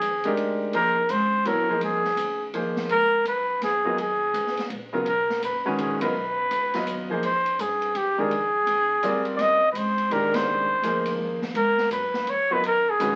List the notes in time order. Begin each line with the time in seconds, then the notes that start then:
Already playing: G#4
0.01 D#2, hi-hat pedal, ride
0.24 G#3 D4 D#4 G4 A#4, ride
0.37 D2, ride
0.73 C2 F3 A#3 D#4 G#4 A#4 C5, ride
0.96 kick
1.09 G#1 C5, hi-hat pedal, ride
1.45 A#1 F#3 B3 E4 A4 A#4 C#5, ride
1.69 F3 A#3 D#4 G#4 C5
1.81 C2 G#4, ride
2.04 snare
2.17 D2, hi-hat pedal, ride
2.53 D#2 F3 A#3 D#4 G#4 C5, ride
2.76 snare
2.89 G#2 A#4, ride
3.25 F#2 B4, hi-hat pedal, ride
3.61 F2 G#4, snare, ride
3.84 F#3 B3 F4 A#4 D#5, kick
3.97 D#2 G#4, ride
4.34 C#2, hi-hat pedal, ride
4.47 snare
4.57 muted upright bass stroke, snare, ride
4.70 A#1, ride
4.93 C#3 F#3 B3 F4 A#4
5.05 B1 A#4, ride
5.30 snare
5.42 F#1 B4, hi-hat pedal, ride
5.65 D#3 G#3 C#4 F#4 G#4 B4
5.78 A#1 G#4, ride
6.01 F#3 B3 F4 A#4 B4 D#5, kick, ride
6.14 B1
6.51 C#2, hi-hat pedal, ride
6.74 F#3 B3 F4 B4 D#5, snare, ride
6.87 D#2, hi-hat pedal, ride
7.10 F3 A#3 D#4 G#4 C5
7.23 F2 C5, ride
7.46 ride
7.59 G2 G#4, hi-hat pedal, ride
7.82 ride
7.94 F#2 G4, ride
8.18 D#3 G#3 D4 G4 G#4 A#4
8.30 F2, ride
8.67 D#2, ride
9.03 D2 G3 C4 F4 A#4 D5, hi-hat pedal, ride
9.25 muted upright bass stroke, ride
9.36 C2 D5, snare, ride
9.41 D#5
9.62 kick
9.72 G#1 B4, hi-hat pedal, ride
9.77 C5
9.98 ride
10.10 A#1 D#3 G#3 D4 G4 A#4, ride
10.34 C5, snare, ride
10.47 C2
10.70 kick
10.82 D2 F3 A#3 D#4 G#4 C5, hi-hat pedal, ride
11.05 ride
11.19 D#2
11.42 snare
11.54 G#2 A#4, ride
11.78 snare
11.90 F#2 B4, hi-hat pedal, ride
12.14 snare
12.27 F2 C#5, ride
12.50 F#3 B3 F4 A#4 B4 D#5
12.62 D#2 A#4, ride
12.90 G#4
12.99 A#1 D#3 G#3 C#4 F#4 B4, hi-hat pedal, ride